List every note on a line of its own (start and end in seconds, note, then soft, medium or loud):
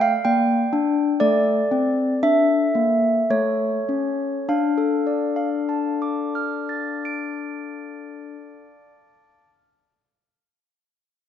0.00 0.14 A3 medium
0.00 0.20 D5 soft
0.00 0.24 F5 medium
0.25 0.63 A#3 medium
0.25 1.17 D5 soft
0.25 1.17 G5 medium
0.73 1.11 D4 medium
1.20 1.61 A3 medium
1.20 3.27 A4 soft
1.20 2.18 D5 medium
1.72 2.12 C4 medium
2.23 2.65 D4 soft
2.23 3.28 E5 medium
2.75 3.20 A#3 medium
3.30 3.78 A3 soft
3.30 4.46 A4 soft
3.30 4.46 C#5 medium
3.89 4.37 C#4 soft
4.49 8.34 D4 soft
4.49 5.35 F5 medium
4.78 8.63 A4 medium
5.07 8.92 D5 soft
5.36 9.21 F5 soft
5.69 9.49 A5 soft
6.02 9.49 D6 soft
6.35 9.49 F6 soft
6.69 9.49 A6 soft
7.05 9.49 D7 soft